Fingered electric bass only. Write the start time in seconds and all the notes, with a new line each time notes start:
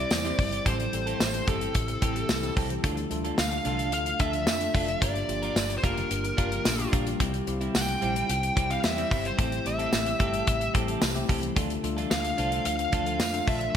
0.11 E2
0.39 G1
0.66 A1
0.93 A1
1.20 A1
1.48 G1
1.75 A1
2.02 A1
2.30 C2
2.57 C2
2.84 D2
3.11 D2
3.38 D2
3.65 C2
3.93 D2
4.20 D2
4.47 F2
4.74 F1
5.02 G1
5.29 G1
5.56 G1
5.83 F1
6.11 G1
6.38 G1
6.66 A#1
6.93 A#1
7.20 C2
7.47 C2
7.75 C2
8.02 A#1
8.29 C2
8.57 C2
8.84 E2
9.11 G1
9.39 A1
9.66 A1
9.93 A1
10.20 G1
10.48 A1
10.75 A1
11.02 C2
11.29 C2
11.57 D2
11.84 D2
12.11 D2
12.39 C2
12.66 D2
12.93 D2
13.20 F2
13.48 A#1